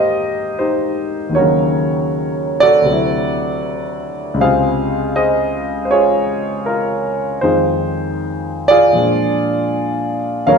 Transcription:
Already playing: G#2 G3 A#3 C4 G4 A#4 C5 D#5 F5
0.59 D#4 G4 C5
1.29 D#2 D#3
1.35 F#3 F#4 A#4 C#5
1.41 C#3
2.60 F#4 A4 D5
2.82 D2 C3
2.89 F#3 E4
4.34 C#2 C#3
4.41 C3 G#4 C5 F5
4.45 F4
5.16 G#4 C5 D#5
5.85 C5
5.91 F4 G#4 C#5
6.66 F4 A#4
7.41 F2 D#3 G#3 D#4 F4 G#4 C5
8.68 F4 G#4 D5
8.93 A#2 F3 G#3
8.97 D4
10.47 D#2 C#3 F#3 C#4 A#4 C#5 F5

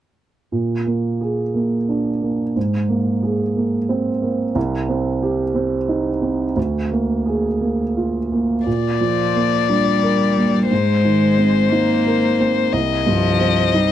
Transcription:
0.52 A#2
0.87 A#3
1.21 G#4
1.55 A#3
1.89 D4
2.22 A#3
2.56 G#2
2.89 A#3
3.23 G#4
3.56 A#3
3.89 C4
4.22 A#3
4.55 C2
4.89 C4
5.22 G4
5.55 C4
5.89 D#4
6.22 C4
6.56 D2
6.91 A#3
7.26 G#4
7.61 A#3
7.97 F4
8.32 A#3
8.67 A#2 D5
9.01 F3
9.35 A#3
9.68 G3 D4
10.03 A#4
10.38 A#3
10.71 G#2 G#3 C5
11.05 D#3
11.38 C4
11.71 A#3 D#4
12.07 A#4
12.40 C4
12.73 C2 D#5
13.06 G2 F3
13.41 C4
13.74 G3 D#4

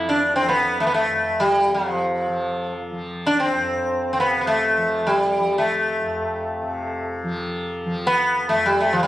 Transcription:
Already playing: F2 C3 F3 E4
0.09 D4
0.36 C4
0.43 F3
0.49 B3
0.80 A3
0.87 B3
0.94 A3
1.05 F2
1.40 G3
1.67 C3
1.74 F3
2.27 F3
2.91 F3
3.26 D4
3.40 C4
3.53 F2
4.13 C3 C4
4.20 B3
4.41 B3
4.47 A3
4.77 F3
5.07 G3
5.39 F3
5.58 A3
5.99 F2
6.62 C3
7.24 F3
7.85 F3
8.07 B3
8.49 F2 A3
8.66 G3
8.80 A3
8.93 F3
9.03 G3

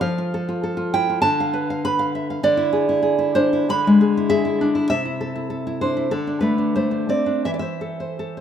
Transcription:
0.01 F3 F5
0.18 F4
0.34 A4
0.49 F4
0.63 A4
0.77 F4
0.94 E4 G5
1.10 F4
1.22 D3 A5
1.40 F5
1.53 B4
1.70 F5
1.85 B4 B5
1.99 F5
2.15 E5
2.30 F5
2.43 D3 D5
2.57 E4
2.73 G#4
2.89 E4
3.02 G#4
3.19 E4
3.35 D4 C5
3.53 E4
3.69 D3 B5
3.87 G#3
4.01 G#4
4.17 E4
4.30 G#4 E5
4.45 E4
4.61 D4
4.75 E4
4.90 C3 E5
5.05 E4
5.21 A4
5.36 E4
5.50 A4
5.67 E4
5.81 D4 C5
5.97 E4
6.11 D3 A4
6.27 D4
6.41 A3 B4
6.58 D4
6.76 A3 C5
6.91 D4
7.09 C4 D5
7.26 D4
7.45 E3 E5
7.54 D5
7.59 C5 E5
7.81 A4
8.00 C5
8.19 A4
8.37 C5

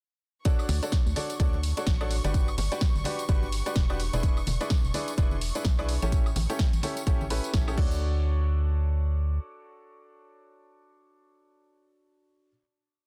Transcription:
0.45 D4 F#4 A4 C#5 D5 C#6, kick, closed hi-hat, tambourine
0.59 tambourine, high woodblock
0.69 D2, open hi-hat, tambourine, high conga
0.83 D4 F#4 A4 C#5 D5, closed hi-hat, tambourine
0.92 kick, snare, closed hi-hat, tambourine
1.06 D2, tambourine
1.16 D4 F#4 A4 C#5 D5, open hi-hat, tambourine, high conga
1.29 closed hi-hat, tambourine
1.40 D2 D4 F#4 A4 C#5 D5, kick, closed hi-hat, tambourine
1.53 tambourine, high conga
1.63 open hi-hat, tambourine
1.77 D4 F#4 A4 C#5 D5, closed hi-hat, tambourine
1.87 A1, kick, snare, closed hi-hat, tambourine
2.01 D4 F#4 A4 C#5 D5, tambourine, high woodblock
2.11 open hi-hat, tambourine
2.24 G1 D4 F#4 G4 B4 D5, closed hi-hat, tambourine
2.34 kick, closed hi-hat, tambourine
2.48 tambourine, high woodblock
2.58 G1, open hi-hat, tambourine, high conga
2.72 D4 F#4 G4 B4 D5, closed hi-hat, tambourine
2.81 kick, snare, closed hi-hat, tambourine
2.95 G1, tambourine
3.04 D4 F#4 G4 B4 D5, open hi-hat, tambourine, high conga
3.19 closed hi-hat, tambourine
3.29 G1 D4 F#4 G4 B4 D5, kick, closed hi-hat, tambourine
3.43 tambourine, high conga
3.52 open hi-hat, tambourine
3.66 D4 F#4 G4 B4 D5, closed hi-hat, tambourine
3.76 E1, kick, snare, closed hi-hat, tambourine
3.90 D4 F#4 G4 B4 D5, tambourine, high woodblock
4.00 open hi-hat, tambourine
4.13 E1 D4 E4 G#4 B4 D5, closed hi-hat, tambourine
4.23 kick, closed hi-hat, tambourine
4.37 tambourine, high woodblock
4.47 E1, open hi-hat, tambourine, high conga
4.61 D4 E4 G#4 B4 D5, closed hi-hat, tambourine
4.70 kick, snare, closed hi-hat, tambourine
4.84 E1, tambourine
4.94 D4 E4 G#4 B4 D5, open hi-hat, tambourine, high conga
5.08 closed hi-hat, tambourine
5.18 E1 D4 E4 G#4 B4 D5, kick, closed hi-hat, tambourine
5.31 tambourine, high conga
5.41 open hi-hat, tambourine
5.55 D4 E4 G#4 B4 D5, closed hi-hat, tambourine
5.65 B1, kick, snare, closed hi-hat
5.79 D4 E4 G#4 B4 D5, tambourine, high woodblock
5.89 open hi-hat, tambourine
6.02 A1 C#4 E4 G4 A4 C#5, closed hi-hat, tambourine
6.12 kick, closed hi-hat, tambourine
6.26 tambourine, high woodblock
6.36 A1, open hi-hat, tambourine, high conga
6.50 C#4 E4 G4 A4 C#5, closed hi-hat, tambourine
6.59 kick, snare, closed hi-hat, tambourine
6.73 A1, closed hi-hat, tambourine
6.83 C#4 E4 G4 A4 C#5, open hi-hat, tambourine, high conga
6.97 closed hi-hat, tambourine
7.07 A1 C#4 E4 G4 A4 C#5, kick, closed hi-hat, tambourine
7.21 tambourine, high conga
7.30 C#4 E4 G4 A4 B4, open hi-hat, tambourine
7.44 closed hi-hat, tambourine
7.54 A1 C#4 E4 G4 A4 C#5, kick, snare, closed hi-hat, tambourine
7.68 C#4 E4 G4 A4 C#5, tambourine, high woodblock
7.78 D2 D4 F#4 A4 C#5 D5, kick, crash
7.91 tambourine

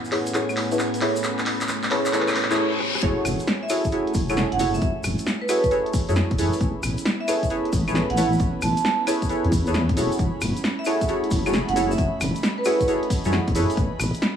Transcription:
Already playing: A2 A3 B3 C#4 E4 F#5 G#5 B5, riser
0.05 shaker
0.12 E4 G#4 A4 B4 C#5, clap, open hi-hat
0.27 closed hi-hat, shaker
0.34 E4 G#4 A4 B4 C#5, clap, closed hi-hat, shaker
0.49 claves, shaker
0.57 clap, open hi-hat
0.71 E4 G#4 A4 B4 C#5, closed hi-hat, shaker
0.79 clap, shaker
0.94 closed hi-hat, shaker
1.01 E4 G#4 A4 B4 C#5, clap, open hi-hat
1.16 shaker
1.23 F#4, clap, closed hi-hat, shaker
1.39 clap, shaker
1.46 clap, open hi-hat
1.61 clap, closed hi-hat, shaker
1.68 clap, shaker
1.83 clap, shaker
1.91 E4 G#4 A4 B4 C#5, clap, open hi-hat
2.05 clap, closed hi-hat, shaker
2.13 E4 G#4 A4 B4 C#5, clap, closed hi-hat, reverse cymbal, shaker
2.21 clap
2.28 clap, closed hi-hat, claves, shaker
2.32 clap
2.35 clap, open hi-hat
2.43 clap
2.50 E4 G#4 A4 B4 C#5, clap, closed hi-hat, shaker
2.54 clap
2.80 cross-stick
2.95 cross-stick
3.02 F#1 A3 C#4 E4 F#4 G#4 A4 C#5 G#5, kick, closed hi-hat, shaker
3.25 F#1, cross-stick, open hi-hat, claves, shaker
3.40 closed hi-hat, shaker
3.47 snare, shaker
3.63 E5
3.69 E4 F#4 G#4 A4 C#5 E5, open hi-hat, claves, shaker
3.85 kick, closed hi-hat, shaker
3.91 E4 F#4 G#4 A4 C#5, closed hi-hat, shaker
4.07 closed hi-hat
4.14 F#1, kick, open hi-hat, shaker
4.29 E4 F#4 G#4 A4 C#5, closed hi-hat, claves, shaker
4.37 snare, shaker
4.52 F#1 F#5, closed hi-hat
4.59 E4 F#4 G#4 A4 C#5, open hi-hat, shaker
4.74 E5, shaker
4.82 F#1, kick, closed hi-hat, shaker
5.04 F#1, cross-stick, open hi-hat, claves, shaker
5.19 closed hi-hat, shaker
5.26 snare, shaker
5.42 B4
5.49 E4 F#4 G#4 A4 C#5, cross-stick, open hi-hat, claves, shaker
5.64 kick, closed hi-hat, shaker
5.71 E4 F#4 G#4 A4 C#5, closed hi-hat, shaker
5.86 closed hi-hat
5.93 kick, open hi-hat, shaker
6.08 F#2 E4 F#4 G#4 A4 C#5, closed hi-hat, shaker
6.16 snare, shaker
6.31 E1, kick, closed hi-hat
6.38 F#2 E4 G#4 A4 B4 C#5, open hi-hat, shaker
6.53 open hi-hat, shaker
6.61 A1 B3 B5, kick, closed hi-hat, shaker
6.83 A1, cross-stick, open hi-hat, claves, shaker
6.98 closed hi-hat, shaker
7.05 snare, shaker
7.21 E5
7.28 E4 G#4 A4 B4 C#5 E5, open hi-hat, claves, shaker
7.43 kick, closed hi-hat, shaker
7.49 E4 G#4 A4 B4 C#5, closed hi-hat, shaker
7.65 closed hi-hat
7.73 A1, kick, open hi-hat, shaker
7.88 E4 G#4 A4 B4 C#5, closed hi-hat, claves, shaker
7.95 snare, shaker
8.10 A1 F#5, closed hi-hat
8.17 E4 A4 B4 C#5, open hi-hat, shaker
8.33 shaker
8.39 A1, kick, closed hi-hat, shaker
8.62 A1 A5, cross-stick, open hi-hat, claves, shaker
8.77 closed hi-hat, shaker
8.85 snare, shaker
9.07 E4 G#4 A4 B4 C#5, cross-stick, open hi-hat, claves, shaker
9.22 kick, closed hi-hat, shaker
9.29 E4 G#4 A4 B4 C#5, closed hi-hat
9.44 E2, closed hi-hat
9.52 kick, open hi-hat, shaker
9.67 E4 G#4 A4 B4 C#5, closed hi-hat, shaker
9.74 snare, shaker
9.89 kick, closed hi-hat
9.97 E1 E4 F#4 G#4 A4 C#5, open hi-hat, shaker
10.12 open hi-hat, shaker
10.19 F#1 A3, kick, closed hi-hat, shaker
10.41 F#1, cross-stick, open hi-hat, claves, shaker
10.57 closed hi-hat, shaker
10.64 snare, shaker
10.79 E5
10.85 E4 F#4 G#4 A4 C#5 E5, open hi-hat, claves, shaker
11.01 kick, closed hi-hat, shaker
11.08 E4 F#4 G#4 A4 C#5, closed hi-hat, shaker
11.24 closed hi-hat
11.31 F#1, kick, open hi-hat, shaker
11.46 E4 F#4 G#4 A4 C#5, closed hi-hat, claves, shaker
11.53 snare, shaker
11.68 F#1 F#5, closed hi-hat
11.76 E4 F#4 G#4 A4 C#5, open hi-hat, shaker
11.91 E5, shaker
11.98 F#1 D#5, kick, closed hi-hat, shaker
12.21 F#1, cross-stick, open hi-hat, claves, shaker
12.36 closed hi-hat, shaker
12.43 snare, shaker
12.58 B4
12.65 E4 F#4 G#4 A4 C#5, cross-stick, open hi-hat, claves, shaker
12.80 kick, closed hi-hat, shaker
12.88 E4 F#4 G#4 A4 C#5, closed hi-hat, shaker
13.03 closed hi-hat
13.10 kick, open hi-hat, shaker
13.25 F#2 E4 F#4 G#4 A4 C#5, closed hi-hat, shaker
13.32 snare, shaker
13.48 E1, kick, closed hi-hat
13.55 F#2 E4 G#4 A4 B4 C#5, open hi-hat, shaker
13.70 open hi-hat, shaker
13.77 A1 B3 C#4 E4, kick, closed hi-hat, shaker
14.00 A1, cross-stick, open hi-hat, claves, shaker
14.14 closed hi-hat, shaker
14.22 snare, shaker

